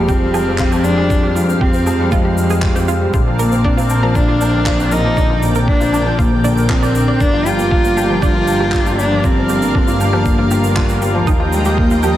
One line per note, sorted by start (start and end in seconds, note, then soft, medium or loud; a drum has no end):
0.00 3.11 F2 medium
0.00 0.21 G3 loud
0.00 0.34 G#3 medium
0.00 0.47 C4 medium
0.00 7.17 C4 medium
0.00 0.60 F4 medium
0.00 3.10 G4 medium
0.00 3.10 F5 medium
0.00 sub drop medium
0.08 0.21 F3 medium
0.08 0.86 C4 loud
0.08 0.15 G4 medium
0.08 kick loud
0.08 shaker medium
0.21 0.34 G3 medium
0.34 0.46 G#3 medium
0.34 0.39 G#4 medium
0.34 low woodblock medium
0.34 shaker medium
0.47 0.59 C4 medium
0.58 0.67 F4 medium
0.58 0.62 F4 loud
0.58 kick loud
0.58 clap medium
0.72 0.84 C4 medium
0.72 0.77 G4 medium
0.72 low woodblock medium
0.72 shaker medium
0.84 0.97 G#3 medium
0.84 1.36 D4 loud
0.84 shaker medium
0.98 1.05 G3 loud
0.98 1.02 G#4 medium
1.10 1.23 F3 medium
1.10 kick loud
1.10 shaker medium
1.23 1.35 G3 medium
1.23 1.28 G4 medium
1.36 1.48 G#3 medium
1.36 1.40 F4 medium
1.36 shaker medium
1.48 1.60 C4 medium
1.48 shaker soft
1.61 2.13 C4 loud
1.61 1.68 F4 medium
1.61 1.68 G4 medium
1.61 kick loud
1.73 1.86 C4 medium
1.73 shaker medium
1.86 1.99 G#3 medium
1.86 1.91 G#4 medium
1.86 low woodblock medium
1.86 shaker medium
2.00 2.07 G3 loud
2.12 2.24 F3 medium
2.12 2.88 G#3 loud
2.12 2.15 F4 loud
2.12 kick loud
2.12 shaker medium
2.25 2.37 G3 medium
2.25 2.29 G4 medium
2.37 2.50 G#3 medium
2.37 shaker medium
2.50 2.62 C4 medium
2.50 2.55 G#4 medium
2.50 shaker medium
2.62 2.70 F4 medium
2.62 kick loud
2.62 clap medium
2.75 2.88 C4 medium
2.75 2.80 G4 medium
2.75 shaker medium
2.88 3.01 G#3 medium
2.88 2.93 F4 medium
2.88 shaker medium
3.01 3.08 G3 medium
3.14 7.18 A#1 loud
3.14 3.26 D3 medium
3.14 3.21 F4 medium
3.14 12.17 A#4 medium
3.14 7.17 D5 medium
3.14 5.15 F5 medium
3.14 kick loud
3.14 shaker medium
3.27 3.39 F3 medium
3.39 3.51 A#3 medium
3.39 3.67 A#3 medium
3.39 3.44 A#4 medium
3.39 shaker medium
3.52 3.64 C4 medium
3.52 shaker soft
3.65 4.17 C4 loud
3.65 3.67 D4 loud
3.65 3.72 D4 medium
3.65 kick loud
3.77 3.89 C4 medium
3.77 3.82 F4 medium
3.77 shaker medium
3.90 4.02 A#3 medium
3.90 low woodblock medium
3.90 shaker medium
4.03 4.10 F3 loud
4.03 4.07 A#4 medium
4.15 4.27 D3 medium
4.15 4.93 D4 loud
4.15 kick loud
4.15 shaker medium
4.28 4.40 F3 medium
4.28 4.33 F4 medium
4.41 4.53 A#3 medium
4.41 4.45 D4 medium
4.41 low woodblock medium
4.41 shaker medium
4.54 4.66 C4 medium
4.66 4.74 D4 medium
4.66 4.73 F4 medium
4.66 kick loud
4.66 clap medium
4.79 4.91 C4 medium
4.79 low woodblock medium
4.79 shaker medium
4.91 5.04 A#3 medium
4.91 5.43 D#4 loud
4.91 4.96 A#4 medium
4.91 shaker medium
5.04 5.12 F3 loud
5.17 5.29 D3 medium
5.17 5.20 D4 loud
5.17 9.20 G5 medium
5.17 kick loud
5.17 shaker medium
5.30 5.42 F3 medium
5.30 5.34 F4 medium
5.43 5.55 A#3 medium
5.43 shaker medium
5.55 5.67 C4 medium
5.55 5.60 A#4 medium
5.55 shaker soft
5.68 6.20 D4 loud
5.68 5.75 D4 medium
5.68 kick loud
5.80 5.93 C4 medium
5.80 5.85 F4 medium
5.80 shaker medium
5.93 6.05 A#3 medium
5.93 5.98 D4 medium
5.93 low woodblock medium
5.93 shaker medium
6.06 6.13 F3 loud
6.18 6.31 D3 medium
6.18 6.71 A#3 medium
6.18 6.26 F4 medium
6.18 kick loud
6.18 shaker medium
6.32 6.44 F3 medium
6.44 6.56 A#3 medium
6.44 6.49 D4 loud
6.44 shaker medium
6.57 6.69 A#4 medium
6.57 shaker soft
6.70 7.22 C4 loud
6.70 6.82 D4 medium
6.70 6.72 F4 medium
6.70 kick loud
6.70 clap medium
6.82 6.95 A#4 medium
6.82 6.87 D5 medium
6.82 shaker medium
6.95 7.07 D3 medium
6.95 shaker medium
7.08 7.20 A#4 medium
7.08 7.12 D5 medium
7.20 11.25 G1 medium
7.20 7.33 D3 medium
7.20 7.47 D4 loud
7.20 12.17 F4 medium
7.20 11.23 D5 medium
7.20 kick loud
7.20 shaker medium
7.34 7.46 F3 medium
7.34 7.38 F4 medium
7.46 7.58 G3 medium
7.46 8.22 F4 loud
7.46 7.51 G4 medium
7.46 shaker medium
7.59 7.71 A#3 medium
7.59 shaker soft
7.71 7.79 D4 medium
7.71 7.78 F4 medium
7.71 kick loud
7.84 7.96 A#3 medium
7.84 shaker medium
7.97 8.09 G3 medium
7.97 8.01 G4 medium
7.97 low woodblock medium
7.97 shaker medium
8.10 8.17 F3 loud
8.22 8.34 D3 medium
8.22 8.25 D4 loud
8.22 8.95 F4 loud
8.22 kick loud
8.22 shaker medium
8.35 8.47 F3 medium
8.35 8.39 F4 medium
8.48 8.60 G3 medium
8.48 low woodblock medium
8.48 shaker medium
8.60 8.72 A#3 medium
8.60 8.65 G4 medium
8.72 8.80 D4 medium
8.72 kick loud
8.72 clap medium
8.86 8.98 A#3 medium
8.86 8.90 F4 medium
8.86 low woodblock medium
8.86 shaker medium
8.98 9.11 G3 medium
8.98 9.26 D4 loud
8.98 9.03 G4 medium
8.98 shaker medium
9.11 9.19 F3 loud
9.24 9.36 D3 medium
9.24 10.02 C4 loud
9.24 9.31 F4 medium
9.24 11.25 F5 medium
9.24 kick loud
9.24 shaker medium
9.37 9.49 F3 medium
9.49 9.62 G3 medium
9.49 9.54 G4 medium
9.49 shaker medium
9.62 9.74 A#3 medium
9.62 shaker soft
9.75 9.82 D4 medium
9.75 9.78 D4 loud
9.75 kick loud
9.87 10.00 A#3 medium
9.87 9.92 F4 medium
9.87 shaker medium
10.00 10.12 G3 medium
10.00 11.02 A#3 loud
10.00 low woodblock medium
10.00 shaker medium
10.13 10.20 F3 loud
10.13 10.18 G4 medium
10.25 10.38 D3 medium
10.25 kick medium
10.25 shaker medium
10.38 10.50 F3 medium
10.38 10.43 F4 medium
10.51 10.63 G3 medium
10.51 10.56 G4 medium
10.51 shaker medium
10.63 10.76 A#3 medium
10.63 shaker medium
10.76 10.84 D4 medium
10.76 10.83 F4 medium
10.76 kick loud
10.76 clap medium
10.89 11.01 A#3 medium
10.89 shaker medium
11.02 11.14 G3 medium
11.02 11.06 G4 medium
11.02 shaker medium
11.15 11.22 F3 loud
11.27 12.17 D#2 medium
11.27 11.39 D#3 medium
11.27 11.30 D#4 loud
11.27 12.17 D#5 medium
11.27 12.17 G5 medium
11.27 kick loud
11.27 shaker medium
11.40 11.52 F3 medium
11.40 11.45 F4 medium
11.53 11.65 G3 medium
11.53 11.79 G#3 medium
11.53 shaker medium
11.65 11.78 A#3 medium
11.65 11.70 G4 medium
11.65 shaker medium
11.78 12.05 A#3 loud
11.78 11.85 D#4 medium
11.78 kick loud
11.91 12.03 A#3 medium
11.91 11.96 F4 medium
11.91 shaker medium
12.03 12.17 F3 loud
12.03 12.16 G3 medium
12.03 12.08 G4 medium
12.03 low woodblock medium
12.03 shaker medium